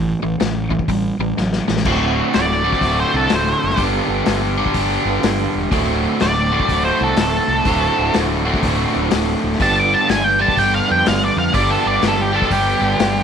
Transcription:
Already playing: A1 A2 E3
0.22 A1 A2 E3
0.40 A1 A2 F#3, snare, open hi-hat
0.70 A2 E3, kick
0.79 kick
0.88 A1 A2 G3, kick, open hi-hat
1.19 A1 A2 G3
1.37 A1 A2 F#3, snare
1.53 snare
1.68 A1 A2 E3, snare
1.77 snare
1.84 D1 D2 A2 D3 A3 C4 E4 F#4 A4, kick, crash
2.33 D1 D5, snare, open hi-hat
2.64 D2 A2 D3 A3 C4 F#4
2.72 kick, snare
2.81 D1, kick, open hi-hat
3.00 C5
3.14 C2 C4 E4 F#4 A4
3.29 D1, snare, open hi-hat
3.35 C5
3.64 F#1
3.70 snare
3.76 G1 G2 D3 G3 B3 D4 G4, kick, open hi-hat
3.84 B3 D4 F4 A4
4.08 G1
4.26 G1, snare, open hi-hat
4.58 G2 D3 G3 B3 D4 G4
4.66 kick
4.74 G1, kick, open hi-hat
5.05 G1 B3 D4 F4 A4
5.23 G1, snare, open hi-hat
5.55 E1
5.71 D1 D2 A2 D3 A3 C4 E4 F#4 A4, kick, open hi-hat
6.20 D1 D5, snare, open hi-hat
6.52 D2 A2 D3 A3 C4 F#4
6.60 kick
6.69 D1, kick, open hi-hat
6.85 C5
6.99 C2 C4 E4 F#4 A4
7.04 A4
7.17 D1, snare, open hi-hat
7.21 A4
7.48 C2
7.65 D1 D2 A2 D3 A3 C4 E4 F#4 A4, kick, open hi-hat
7.99 D1
8.14 D1, snare, open hi-hat
8.45 D2 A2 D3 A3 C4 F#4
8.54 kick, snare
8.63 D1, kick, open hi-hat
8.94 D1 C4 E4 F#4 A4
9.11 D1, snare, open hi-hat
9.44 D1
9.52 snare
9.60 G1 G2 D3 G3 B3 D4 F4 G4 A4 A5, kick, open hi-hat
9.79 D6
9.94 A5
10.09 G1 G#5, snare, open hi-hat
10.24 G5
10.39 G2 D3 G3 B3 D4 G4 A5
10.48 kick, snare
10.57 G1 G5, kick, open hi-hat
10.75 F5
10.88 F2 B3 D4 F4 A4 G5
11.06 G1 F5, snare, open hi-hat
11.24 D5
11.37 F2 F5
11.53 G1 G2 D3 G3 B3 D4 F4 G4 A4 D5, kick, open hi-hat
11.70 A4
11.86 G1 D5
12.02 G1, snare, open hi-hat
12.08 A4
12.22 G4
12.33 G2 D3 G3 B3 D4 G4 A4
12.42 kick, snare
12.51 G1 G4, kick, open hi-hat
12.81 G1 B3 D4 F4 A4
12.99 G1, snare, open hi-hat

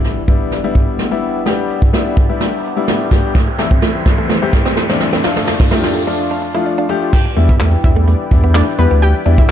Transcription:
Already playing: G3 B3 D4 E4 G4 D5 E5, impact, riser
0.04 snare
0.28 G3 B3 D4 E4, kick
0.52 snare
0.64 G3 B3 D4 E4
0.75 kick
0.99 snare
1.11 G3 B3 D4 E4
1.46 G3 B3 D4 G4, snare, closed hi-hat
1.70 closed hi-hat
1.82 kick
1.93 G3 B3 D4 E4, snare, closed hi-hat
2.17 kick, closed hi-hat
2.29 G3 B3 D4 E4
2.40 snare, closed hi-hat
2.64 closed hi-hat
2.76 G3 B3 D4 E4
2.88 snare, closed hi-hat
3.11 G3 B3 D4 G4, kick, snare, open hi-hat
3.35 E3 A3 E4 C5 E5, kick, snare, closed hi-hat
3.47 G4, muted clean electric guitar stroke
3.59 E2 G3 A3 C4 E4 A4, snare, closed hi-hat
3.71 C4, kick
3.82 A3 E5, snare, closed hi-hat
3.95 E4, muted clean electric guitar stroke
4.06 E2 G3 A3 C4 E4 G4, kick, snare, closed hi-hat
4.18 A3 A4, closed hi-hat
4.29 A3, snare, closed hi-hat
4.42 E2 G3 A3 C4 G4 E5
4.53 muted clean electric guitar stroke, kick, snare, closed hi-hat
4.66 C4, snare
4.77 A3 A4, snare, closed hi-hat
4.89 E2 G3 A3 C4 D4 C5, snare, closed hi-hat
5.00 E5, muted clean electric guitar stroke, snare, open hi-hat
5.13 C4 E4, snare
5.24 F2 F3 A3 D4 F4 D5 F5, snare, closed hi-hat
5.36 A4, muted clean electric guitar stroke, snare
5.47 D4 D5, snare, closed hi-hat
5.60 D4, kick, snare
5.71 F3 A3 D4 E4 G4 F6, snare, closed hi-hat
5.84 F4, muted clean electric guitar stroke, snare
5.95 A4, closed hi-hat
6.07 F3 A3 D4 F4 D5, closed hi-hat
6.31 D4 F6
6.42 muted clean electric guitar stroke
6.54 F3 A3 D4 E4 F4
6.66 D5, muted clean electric guitar stroke
6.78 D4 F5
6.89 F3 A3 D4 G4 F6
7.02 F4
7.13 E4 G4 B4 D5 G5, kick, crash
7.25 muted clean electric guitar stroke
7.37 E2 E3 G3 A3 B3 D4 E4, closed hi-hat
7.49 B3 E4 E5, kick
7.60 E2 A3, snare, clap, closed hi-hat
7.73 muted clean electric guitar stroke
7.84 E2 E3 G3 B3 D4 E4 E5, kick, closed hi-hat
7.96 A3
8.07 A3, closed hi-hat
8.31 E2 E3 G3 B3 D4 E4, muted clean electric guitar stroke, kick, closed hi-hat
8.44 B3
8.54 A3 D4 D5, snare, clap, closed hi-hat
8.67 closed hi-hat
8.78 E2 E3 G3 B3 D4 G4 B4, muted clean electric guitar stroke, open hi-hat
8.91 D2 B3
9.02 G4 G5, closed hi-hat
9.15 muted clean electric guitar stroke
9.25 E2 E3 G3 B3 D4 E4, closed hi-hat
9.38 E4 E5, kick

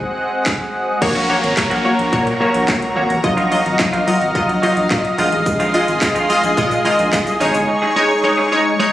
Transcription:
Already playing: G#3 C4 F#4 G#4 C5 D#5 F#5
0.46 kick, snare, clap
1.01 A#1 A#3 F#4 A#4 C#5 A#5, muted clean electric guitar stroke, kick, closed hi-hat, crash, downlifter
1.15 F#3 A#3 C#4 F#4, closed hi-hat
1.29 F#3 A#3 C#4 F#4 C#5
1.43 G#1, muted clean electric guitar stroke, closed hi-hat
1.57 A#3 F#4 C#5, muted clean electric guitar stroke, kick, snare, clap, closed hi-hat
1.71 A#1 F#3 A#3 C#4 F#4, closed hi-hat
1.85 F#3 A#3 C#4 F#4 C#5
1.99 A#1, muted clean electric guitar stroke, closed hi-hat
2.12 A#2 A#3 F#4 C#5, muted clean electric guitar stroke, kick, closed hi-hat
2.26 muted clean electric guitar stroke, closed hi-hat
2.40 F#3 A#3 C#4 F#4 C#5
2.54 A#1 F#3 A#3 C#4 F#4, closed hi-hat
2.68 A#3 F#4 C#5, kick, snare, clap, closed hi-hat
2.82 C#2, muted clean electric guitar stroke, closed hi-hat
2.96 G#1 F#3 A#3 C#4 F#4 C#5
3.10 A1, muted clean electric guitar stroke, closed hi-hat
3.24 A#1 F#3 F4 D#5 F5, muted clean electric guitar stroke, kick, closed hi-hat
3.37 F#3 A#3 D#4 F4, closed hi-hat
3.51 F#3 A#3 D#4 F4 D#5, open hi-hat
3.66 G#1, closed hi-hat
3.79 F#3 F4 D#5, muted clean electric guitar stroke, kick, snare, clap, closed hi-hat
3.93 A#1 F#3 A#3 D#4 F4, closed hi-hat
4.07 F#3 A#3 D#4 F4 D#5, open hi-hat
4.21 G#1, closed hi-hat
4.35 F#3 F4 D#5, kick, closed hi-hat
4.49 A#1, muted clean electric guitar stroke, closed hi-hat
4.62 F#3 A#3 D#4 F4 D#5, open hi-hat
4.77 A#1, muted clean electric guitar stroke, closed hi-hat
4.90 A#2 F#3 F4 D#5, kick, snare, clap, closed hi-hat
5.04 muted clean electric guitar stroke, closed hi-hat
5.18 A#1 D#3 G#3 C4 F4 G#4 D#5 C6, open hi-hat
5.32 A1, muted clean electric guitar stroke, closed hi-hat
5.46 A#1, muted clean electric guitar stroke, kick, closed hi-hat, shaker
5.60 D#3 G#3 C4 F4, closed hi-hat, shaker
5.74 D#3 G#3 C4 F4 D#5, open hi-hat
5.88 G#1, muted clean electric guitar stroke, closed hi-hat, shaker
6.01 G#3 F4 D#5, muted clean electric guitar stroke, kick, snare, clap, closed hi-hat, shaker
6.15 A#1 D#3 G#3 C4 F4, closed hi-hat, shaker
6.29 D#3 G#3 C4 F4 D#5, open hi-hat, shaker
6.43 A#1, muted clean electric guitar stroke, closed hi-hat, shaker
6.57 A#2 G#3 F4 D#5, kick, closed hi-hat, shaker
6.71 muted clean electric guitar stroke, closed hi-hat, shaker
6.85 D#3 G#3 C4 F4 D#5, open hi-hat
6.99 A#1, muted clean electric guitar stroke, closed hi-hat, shaker
7.13 G#3 F4 D#5, kick, snare, clap, closed hi-hat, shaker
7.27 C2, muted clean electric guitar stroke, closed hi-hat, shaker
7.40 G#1 G#3 C#4 D#4 G#4 C#5 C#6, open hi-hat, shaker
7.54 G1, muted clean electric guitar stroke, closed hi-hat, shaker
7.68 muted clean electric guitar stroke
7.82 G#3 C#4 D#4 G#4
7.96 G#3 C#4 D#4 G#4 C#5
8.10 muted clean electric guitar stroke
8.24 G#3 D#4 C#5, muted clean electric guitar stroke
8.37 G#3 C#4 D#4 G#4
8.51 G#3 C#4 D#4 G#4 C#5
8.65 muted clean electric guitar stroke
8.79 G#3 D#4 C#5

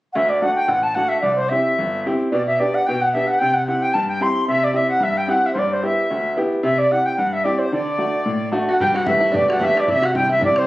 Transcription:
0.12 D2 E5 F#5
0.17 E5
0.29 D5
0.42 A3 D4 F#4 F#5
0.55 G5
0.60 G5
0.68 A1 F#5
0.83 A5
0.95 A3 D4 F#4 F#5
1.08 E5
1.21 C2 D5
1.35 C5
1.49 C4 E4 G4 E5
1.78 G1
2.06 C4 E4 G4
2.32 B2 D5
2.46 E5
2.59 B3 D4 G4 D5
2.74 F#5
2.86 B2 G5
3.01 F#5
3.06 F#5
3.12 B3 D4 G4 E5
3.27 F#5
3.39 C3 G5
3.54 F#5
3.66 C4 E4 G4 F#5
3.82 G5
3.93 G2 A5
4.08 G5
4.21 C4 E4 G4 C6
4.48 C3 E5
4.62 D5
4.73 C4 E4 G4 E5
4.89 F#5
5.00 G2 E5
5.17 G5
5.26 C4 E4 G4 F#5 G5
5.46 E5
5.53 G2 C5 D5
5.58 D5
5.71 C5
5.83 B3 E4 G4 E5
6.10 D2
6.37 B3 E4 G4
6.63 C3 E5
6.78 D5
6.91 C4 E4 G4 F#5
7.05 G5
7.17 G2 F#5
7.33 E5
7.44 C4 E4 G4 D5
7.58 C5
7.72 D3 D5
7.98 A3 D4 F#4
8.26 A2
8.52 A3 D4 F#4
8.69 F#4 F#5
8.80 G2 G4 G5, bodhran
8.94 F#4 F#5, bodhran
9.06 A3 B3 E4 G4 E5, bodhran
9.15 bodhran
9.20 E4
9.32 A3 B3 D4 G4 D5, bodhran
9.43 bodhran
9.48 F#4 F#5, bodhran
9.56 E4, bodhran
9.60 A3 B3 G4 E5, bodhran
9.64 E5
9.74 D4 D5, bodhran
9.80 F#4 D5
9.88 C3 E4 E5, bodhran
9.92 E5
10.02 F#4 F#5, bodhran
10.15 G3 C4 E4 G4 G5, bodhran
10.23 bodhran
10.29 E4 E5
10.41 G3 C4 D4 E4 D5, bodhran
10.49 bodhran
10.56 C4 C5, bodhran
10.63 bodhran

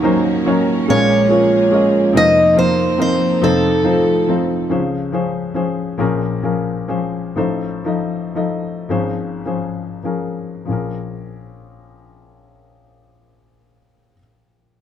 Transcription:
Already playing: D#2 D#3 F#3 A#3 C#4 D#4 F#4 A#4 C#5
0.03 F#3 A#3 C#4 D#4 A#4 C5
0.45 F#3 C#4 D#4 A#4 C#5
0.86 A#1 A#2 F3 G#3 A#3 C#4 F4 G#4 A#4 C#5
1.28 G#3 C#4 F4 A#4 C#5
1.71 G#3 C#4 F4 A#4 D#5
2.13 F1 F2 F3 C4 D#4 A#4 C5
2.17 D#5
2.55 F3 A#3 C4 D#4 A#4 C5
2.97 F3 C4 D#4 A#4 D#5
3.02 C5
3.41 F1 F2 F3 A3 C4 D#4 A4 C5
3.83 F3 C4 D#4 F4 A4 C5
4.27 F3 C4 D#4 A4 C5
4.70 C#2 C#3 F3 C#4 G#4 C5
5.12 F3 C#4 G#4 C5
5.54 F3 C#4 G#4 C5
5.98 A#1 A#2 F3 C#4 G#4 A#4
6.42 F3 C#4 G#4 A#4
6.88 F3 C#4 G#4 C5
7.36 A1 A2 F3 D#4 A4 C5
7.84 F3 D#4 A4 D#5
8.35 F3 D#4 A4 D#5
8.89 G#1 G#2 F3 C#4 G#4 C5
9.45 F3 C#4 G#4 C5
10.03 F3 C#4 G#4 A#4
10.65 A#1 F3 C#4
10.70 G#4 A#4

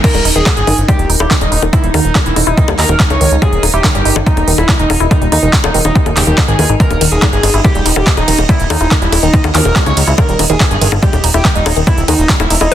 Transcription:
0.04 D#3 D#4 A#4, kick, closed hi-hat, crash
0.15 D#1 G3, closed hi-hat, high bongo
0.25 D#1 D#4, open hi-hat
0.36 D#1 D#3 G#4, closed hi-hat
0.46 kick, clap, closed hi-hat, high bongo
0.57 G1 G#4, closed hi-hat
0.67 G1 D#3, open hi-hat, high bongo
0.78 G1, closed hi-hat
0.88 G3 G4, kick, closed hi-hat, high bongo
0.99 D#1, closed hi-hat
1.10 D#1 D#4, open hi-hat
1.20 D#1 E4 G4, closed hi-hat, high bongo
1.31 D#3, kick, clap, closed hi-hat
1.41 D#1 G3 D#4, closed hi-hat, high bongo
1.52 D#1 D#4, open hi-hat
1.62 D#1 D#3, high bongo
1.73 E4, kick, closed hi-hat
1.84 D#1, closed hi-hat
1.94 D#2 D#3 D#4, open hi-hat, high bongo
2.05 D#1, closed hi-hat
2.15 G3, kick, clap, closed hi-hat, high bongo
2.26 D#1 E4, closed hi-hat
2.36 D#1 D#4, open hi-hat, high bongo
2.47 D#1 D#4 E4, closed hi-hat
2.57 D#3, kick, closed hi-hat
2.68 D#2 G3, closed hi-hat, high bongo
2.79 D#2 D#4 A#4, clap, open hi-hat
2.89 D#1 D#3, closed hi-hat, high bongo
3.00 kick, clap, closed hi-hat
3.10 C#2 C#5, closed hi-hat, high bongo
3.21 C#2 D#3, open hi-hat
3.31 C#2, closed hi-hat
3.42 G3 G#4, kick, closed hi-hat, high bongo
3.53 D#1, closed hi-hat
3.63 D#1 D#4, open hi-hat, high bongo
3.74 D#1 E4 G4
3.84 D#3, kick, clap, closed hi-hat, high bongo
3.95 G1 G3 G4, closed hi-hat
4.05 G1 D#4, open hi-hat
4.16 G1 D#3, high bongo
4.26 D#4, kick, closed hi-hat
4.37 D#1, closed hi-hat, high bongo
4.48 D#1 D#3, open hi-hat
4.58 D#1 E4, closed hi-hat, high bongo
4.69 G3, kick, clap, closed hi-hat
4.79 D#1 D#4, closed hi-hat
4.90 D#1 D#4, open hi-hat, high bongo
5.00 D#1 E4, closed hi-hat
5.11 D#3 D#4, kick, closed hi-hat, high bongo
5.22 D#1 G3, closed hi-hat
5.32 D#2 D#4, open hi-hat, high bongo
5.43 D#1 D#3, closed hi-hat
5.53 kick, clap, closed hi-hat
5.64 D#1 D#4, closed hi-hat, high bongo
5.74 D#1 D#3, open hi-hat
5.85 D#1 D#4, high bongo
5.95 G3, kick, closed hi-hat
6.06 D#1, closed hi-hat, high bongo
6.17 D#1 C#3 G4, clap, open hi-hat
6.27 D#1 D#3, closed hi-hat
6.38 kick, clap, closed hi-hat, high bongo
6.48 G#1 D#3 G#4, closed hi-hat
6.59 D#2 E3, open hi-hat, high bongo
6.69 G#1 D#4, closed hi-hat
6.80 E3 A#4 D#5, kick, closed hi-hat
6.91 D#1, closed hi-hat, high bongo
7.01 D#1 D#3, open hi-hat, ride
7.12 D#1 G#4, closed hi-hat
7.22 G3, kick, clap, closed hi-hat, high bongo
7.33 G1 G#4, closed hi-hat
7.43 G1 D#4, open hi-hat, ride, high bongo
7.54 G1 E4, closed hi-hat
7.64 D#3 G4, kick, closed hi-hat, high bongo
7.75 D#1 G3, closed hi-hat
7.86 D#1 D#4, open hi-hat, ride
7.96 D#1 D#3 G4, high bongo
8.07 E3, kick, clap, closed hi-hat
8.17 D#1 D#4, closed hi-hat, high bongo
8.28 D#1 D#3, open hi-hat, ride
8.38 D#1, high bongo
8.49 G3 E4, kick, closed hi-hat
8.60 D#1, closed hi-hat
8.70 D#2 D#4, open hi-hat, ride, high bongo
8.81 D#1 E4, closed hi-hat
8.91 D#3, kick, clap, closed hi-hat, high bongo
9.02 D#1 G3 E4, closed hi-hat
9.12 D#1 D#4, open hi-hat, ride, high bongo
9.23 D#1 D#3 D#4, closed hi-hat
9.34 E3, kick, closed hi-hat
9.44 D#2, closed hi-hat, high bongo
9.55 D#2 D#3 A#4, clap, open hi-hat, ride, zap
9.65 D#1, closed hi-hat, high bongo
9.76 G3, kick, clap, closed hi-hat
9.86 C#2 C#5, closed hi-hat, high bongo
9.97 C#2 D#4, open hi-hat, ride
10.07 C#2 E4
10.18 D#3 A#4, kick, closed hi-hat, high bongo
10.29 D#1 G3, closed hi-hat
10.39 D#1 D#4, open hi-hat, ride, high bongo
10.50 D#1 D#3 G#4, closed hi-hat
10.60 E3, kick, clap, closed hi-hat, high bongo
10.71 G1 G#4, closed hi-hat
10.81 G1 D#3, open hi-hat, ride
10.92 G1, high bongo
11.02 G3 G4, kick, closed hi-hat
11.13 D#1, closed hi-hat, high bongo
11.24 D#1 D#4, open hi-hat, ride
11.34 D#1 E4 G4, closed hi-hat, high bongo
11.45 D#3, kick, clap, closed hi-hat
11.55 D#1 G3 D#4, closed hi-hat
11.66 D#1 D#4, open hi-hat, ride, high bongo
11.77 D#1 D#3, closed hi-hat
11.87 E3 E4, kick, closed hi-hat, high bongo
11.98 D#1, closed hi-hat
12.08 D#2 D#3 D#4, open hi-hat, ride, high bongo
12.19 D#1, closed hi-hat
12.29 G3, kick, clap, closed hi-hat
12.40 D#1 E4, closed hi-hat, high bongo
12.50 D#1 D#4, open hi-hat, ride
12.61 D#1 D#4 E4, high bongo

